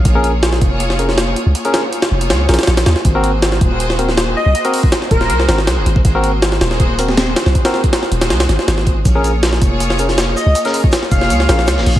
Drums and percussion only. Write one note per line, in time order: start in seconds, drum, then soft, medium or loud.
0.05 kick loud
0.05 closed hi-hat medium
0.24 closed hi-hat medium
0.43 snare loud
0.43 closed hi-hat medium
0.53 snare medium
0.61 kick medium
0.61 closed hi-hat medium
0.80 closed hi-hat medium
0.90 snare medium
0.99 closed hi-hat medium
1.09 snare soft
1.18 snare loud
1.18 closed hi-hat medium
1.36 closed hi-hat medium
1.55 closed hi-hat medium
1.65 closed hi-hat soft
1.74 snare loud
1.74 closed hi-hat medium
1.93 closed hi-hat medium
2.02 snare loud
2.02 closed hi-hat medium
2.21 closed hi-hat medium
2.30 snare loud
2.30 closed hi-hat medium
2.49 snare medium
2.49 closed hi-hat medium
2.54 snare medium
2.54 closed hi-hat medium
2.59 snare medium
2.59 closed hi-hat medium
2.63 snare medium
2.63 closed hi-hat medium
2.67 snare loud
2.67 closed hi-hat medium
2.77 snare loud
2.77 closed hi-hat medium
2.86 snare loud
2.86 closed hi-hat medium
2.96 snare medium
3.05 kick loud
3.05 closed hi-hat medium
3.24 closed hi-hat medium
3.42 snare loud
3.42 closed hi-hat medium
3.52 snare medium
3.61 kick loud
3.61 closed hi-hat medium
3.80 closed hi-hat medium
3.90 snare soft
3.99 closed hi-hat medium
4.09 snare soft
4.17 snare loud
4.17 closed hi-hat medium
4.55 closed hi-hat medium
4.65 closed hi-hat soft
4.74 open hi-hat medium
4.83 kick loud
4.92 snare loud
4.92 closed hi-hat medium
5.02 snare soft
5.11 kick medium
5.11 closed hi-hat medium
5.21 snare soft
5.30 closed hi-hat medium
5.40 snare soft
5.49 snare loud
5.49 closed hi-hat medium
5.58 snare medium
5.67 snare loud
5.67 closed hi-hat medium
5.86 closed hi-hat medium
5.96 kick loud
6.05 kick loud
6.05 closed hi-hat medium
6.24 closed hi-hat medium
6.42 snare loud
6.42 closed hi-hat medium
6.52 snare medium
6.61 snare loud
6.61 closed hi-hat medium
6.71 snare medium
6.80 kick medium
6.80 closed hi-hat medium
6.99 closed hi-hat medium
7.08 snare soft
7.17 snare loud
7.17 closed hi-hat medium
7.36 snare loud
7.36 closed hi-hat medium
7.46 snare medium
7.55 kick medium
7.55 closed hi-hat medium
7.65 snare loud
7.65 closed hi-hat medium
7.74 snare medium
7.84 kick medium
7.84 closed hi-hat medium
7.93 snare loud
7.93 closed hi-hat medium
8.03 snare soft
8.12 closed hi-hat medium
8.21 snare loud
8.21 closed hi-hat medium
8.30 snare loud
8.30 closed hi-hat medium
8.40 snare loud
8.40 closed hi-hat medium
8.49 snare medium
8.49 closed hi-hat medium
8.59 snare medium
8.68 snare loud
8.68 closed hi-hat medium
8.78 snare medium
8.87 kick medium
8.87 closed hi-hat medium
9.05 kick loud
9.05 closed hi-hat medium
9.05 shaker medium
9.24 closed hi-hat medium
9.24 shaker medium
9.43 snare loud
9.43 closed hi-hat medium
9.43 shaker medium
9.52 snare soft
9.52 snare medium
9.62 kick loud
9.62 closed hi-hat medium
9.62 shaker medium
9.80 closed hi-hat medium
9.80 shaker medium
9.90 snare medium
9.99 closed hi-hat medium
9.99 shaker medium
10.09 snare soft
10.09 closed hi-hat soft
10.18 snare loud
10.18 closed hi-hat medium
10.18 shaker medium
10.37 shaker medium
10.55 closed hi-hat medium
10.55 shaker medium
10.65 snare medium
10.65 closed hi-hat soft
10.74 open hi-hat medium
10.74 shaker medium
10.84 kick loud
10.92 snare loud
10.92 closed hi-hat medium
10.92 shaker medium
11.03 snare soft
11.11 kick loud
11.11 closed hi-hat medium
11.11 shaker medium
11.21 snare soft
11.30 closed hi-hat medium
11.30 shaker medium
11.40 snare soft
11.49 snare loud
11.49 closed hi-hat medium
11.49 shaker medium
11.59 snare medium
11.67 snare loud
11.67 closed hi-hat medium
11.67 shaker loud
11.78 snare loud
11.86 closed hi-hat medium
11.86 open hi-hat medium
11.96 kick medium